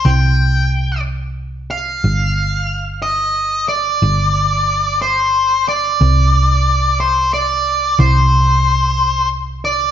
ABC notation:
X:1
M:6/8
L:1/8
Q:3/8=60
K:Cm
V:1 name="Lead electric guitar"
g3 z2 f- | f3 e2 d- | d3 c2 d- | d3 c d2 |
c4 z d |]
V:2 name="Picked electric bass" clef=bass
C,,6 | G,,,6 | G,,,6 | C,,6 |
C,,6 |]